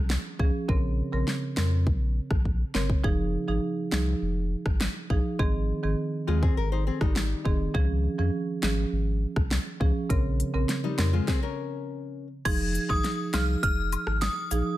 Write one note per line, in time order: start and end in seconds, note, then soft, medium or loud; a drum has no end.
0.00 0.17 C2 loud
0.10 snare loud
0.39 0.51 C#2 loud
0.39 0.55 F3 medium
0.39 0.55 C#4 medium
0.39 0.55 G#4 medium
0.39 kick medium
0.68 1.02 A#1 loud
0.68 0.84 C#3 medium
0.68 0.85 C4 medium
0.68 0.85 A#4 loud
0.68 kick loud
1.12 1.24 A#1 medium
1.12 1.28 C#3 medium
1.12 1.29 C4 medium
1.12 1.29 A#4 medium
1.28 snare medium
1.57 1.88 F2 medium
1.57 1.73 C#3 medium
1.57 1.73 C4 medium
1.57 1.73 A#4 medium
1.57 snare loud
1.87 2.20 A#1 loud
1.87 kick medium
2.31 2.64 A#1 medium
2.31 kick loud
2.31 cross-stick medium
2.45 kick medium
2.74 2.97 G1 loud
2.74 2.90 C#3 medium
2.74 2.90 C4 medium
2.74 2.90 A#4 medium
2.74 snare medium
2.90 kick medium
3.04 3.37 F1 loud
3.04 3.20 F3 medium
3.04 3.20 D#4 medium
3.04 3.20 G#4 loud
3.04 kick loud
3.48 3.59 G#1 medium
3.48 3.64 F3 medium
3.48 3.64 D#4 medium
3.48 3.64 G#4 medium
3.92 4.15 C2 medium
3.92 4.08 F3 medium
3.92 4.08 D#4 medium
3.92 4.08 G#4 medium
3.92 snare loud
4.22 4.55 F1 loud
4.66 4.88 G#1 medium
4.66 kick loud
4.66 cross-stick medium
4.81 snare loud
5.10 5.21 A#1 loud
5.10 5.26 F3 medium
5.10 5.26 D#4 medium
5.10 5.26 G#4 medium
5.10 kick medium
5.39 5.73 G#1 loud
5.39 5.55 D#3 medium
5.39 5.55 C4 medium
5.39 5.55 G#4 loud
5.39 kick loud
5.83 5.95 G#1 medium
5.83 5.99 D#3 medium
5.83 5.99 C4 medium
5.83 5.99 G#4 medium
6.27 6.50 D#2 medium
6.27 6.43 D#3 medium
6.27 6.42 G#3 medium
6.27 6.43 C4 medium
6.27 6.42 F4 medium
6.27 6.44 G#4 medium
6.43 6.57 C4 medium
6.43 6.57 G#4 medium
6.43 kick loud
6.57 6.90 G#1 loud
6.57 6.71 A#4 medium
6.72 6.86 D#4 medium
6.72 6.86 C5 medium
6.87 7.01 C4 medium
6.87 7.01 G#4 medium
7.01 7.34 G#1 medium
7.01 7.72 G3 medium
7.01 7.71 D#4 medium
7.01 kick loud
7.01 cross-stick medium
7.16 snare loud
7.45 7.68 F1 medium
7.45 7.61 D#3 medium
7.45 7.61 C4 medium
7.45 7.61 G#4 medium
7.45 kick medium
7.74 8.08 C#2 loud
7.74 7.90 F3 medium
7.74 7.90 C#4 medium
7.74 7.90 G#4 loud
7.74 kick loud
8.18 8.30 F2 medium
8.18 8.34 F3 medium
8.18 8.35 C#4 medium
8.18 8.35 G#4 medium
8.62 8.85 G#1 medium
8.62 8.78 F3 medium
8.62 8.79 C#4 medium
8.62 8.79 G#4 medium
8.62 snare loud
8.92 9.26 G#1 loud
9.36 9.59 C2 loud
9.36 kick loud
9.36 cross-stick medium
9.51 snare loud
9.80 9.92 C#2 loud
9.80 9.96 F3 medium
9.80 9.96 C#4 medium
9.80 9.97 G#4 medium
9.80 kick medium
10.10 10.43 A#1 loud
10.10 10.26 C#3 loud
10.10 10.26 C4 medium
10.10 10.26 A#4 loud
10.10 kick loud
10.10 closed hi-hat medium
10.40 closed hi-hat medium
10.54 10.65 A#1 medium
10.54 10.70 C#3 medium
10.54 10.70 C4 medium
10.54 10.70 A#4 medium
10.69 snare medium
10.69 closed hi-hat medium
10.84 11.12 G3 medium
10.84 11.12 D#4 medium
10.98 11.20 F2 medium
10.98 11.14 C#3 medium
10.98 11.14 C4 medium
10.98 11.14 A#4 medium
10.98 snare loud
10.98 closed hi-hat medium
11.13 11.27 G#3 medium
11.13 11.27 F4 medium
11.28 11.42 C4 medium
11.28 11.42 G#4 medium
11.28 kick loud
11.28 snare medium
11.43 12.27 C#4 medium
11.43 12.27 A#4 medium
12.45 12.79 F1 loud
12.45 12.61 F3 medium
12.45 12.61 D#4 medium
12.45 12.61 G#4 loud
12.45 12.65 G#6 loud
12.45 kick loud
12.45 closed hi-hat medium
12.45 crash loud
12.45 high woodblock medium
12.75 closed hi-hat medium
12.75 cabasa medium
12.89 13.01 G#1 medium
12.89 13.05 F3 medium
12.89 13.05 D#4 medium
12.89 13.05 G#4 medium
12.89 13.00 D#6 medium
12.89 kick medium
12.89 high woodblock medium
13.04 snare medium
13.04 closed hi-hat medium
13.33 13.56 C2 loud
13.33 13.49 F3 medium
13.33 13.49 D#4 medium
13.33 13.49 G#4 medium
13.33 13.44 F6 medium
13.33 snare loud
13.33 closed hi-hat medium
13.33 cabasa medium
13.33 high woodblock medium
13.63 13.96 F1 loud
13.63 14.04 F6 medium
13.63 kick loud
13.63 closed hi-hat medium
13.92 closed hi-hat medium
13.92 cabasa medium
13.92 high woodblock medium
14.07 14.29 G#1 medium
14.07 cross-stick medium
14.22 14.63 D#6 medium
14.22 snare loud
14.22 closed hi-hat medium
14.51 14.62 A#1 loud
14.51 14.67 F3 medium
14.51 14.67 D#4 medium
14.51 14.67 G#4 medium
14.51 closed hi-hat medium
14.51 cabasa medium